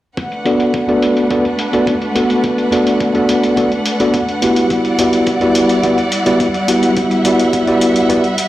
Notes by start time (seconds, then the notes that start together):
0.17 A3 D4 B4 F#5, kick, closed hi-hat
0.32 closed hi-hat
0.45 B3 D4 F#4 A4 D5, closed hi-hat
0.60 closed hi-hat
0.74 kick, closed hi-hat
0.88 B3 D4 F#4 A4 D5, closed hi-hat
1.02 closed hi-hat
1.17 closed hi-hat
1.30 B3 D4 F#4 A4 D5, kick, closed hi-hat
1.45 closed hi-hat
1.59 closed hi-hat
1.73 B3 D4 F#4 A4 D5, closed hi-hat
1.87 kick, closed hi-hat
2.02 closed hi-hat
2.15 B3 D4 F#4 A4 F#5, closed hi-hat
2.30 closed hi-hat
2.44 kick, closed hi-hat
2.58 closed hi-hat
2.72 B3 D4 F#4 A4 D5, closed hi-hat
2.87 closed hi-hat
3.00 kick, closed hi-hat
3.14 B3 D4 F#4 A4 D5, closed hi-hat
3.29 closed hi-hat
3.43 closed hi-hat
3.57 B3 D4 F#4 A4 D5, kick, closed hi-hat
3.72 closed hi-hat
3.86 closed hi-hat
4.00 B3 D4 F#4 A4 D5, closed hi-hat
4.14 kick, closed hi-hat
4.29 closed hi-hat
4.42 B3 E4 F#4 G4 F#5, closed hi-hat
4.56 closed hi-hat
4.70 G3 E4 D5, kick, closed hi-hat
4.85 closed hi-hat
4.99 B3 E4 F#4 G4 D5, closed hi-hat
5.13 closed hi-hat
5.27 kick, closed hi-hat
5.41 B3 E4 F#4 G4 D5, closed hi-hat
5.55 closed hi-hat
5.69 closed hi-hat
5.83 B3 E4 F#4 G4 D5, kick, closed hi-hat
5.98 closed hi-hat
6.12 closed hi-hat
6.26 B3 E4 F#4 G4 D5, closed hi-hat
6.40 kick, closed hi-hat
6.54 closed hi-hat
6.68 B3 E4 F#4 G4 F#5, closed hi-hat
6.83 closed hi-hat
6.97 E5, kick, closed hi-hat
7.11 closed hi-hat
7.24 B3 E4 F#4 G4 D5, closed hi-hat
7.39 closed hi-hat
7.53 kick, closed hi-hat
7.67 B3 E4 F#4 G4 D5, closed hi-hat
7.81 closed hi-hat
7.96 closed hi-hat
8.09 B3 E4 F#4 G4 D5, kick, closed hi-hat
8.24 closed hi-hat
8.38 closed hi-hat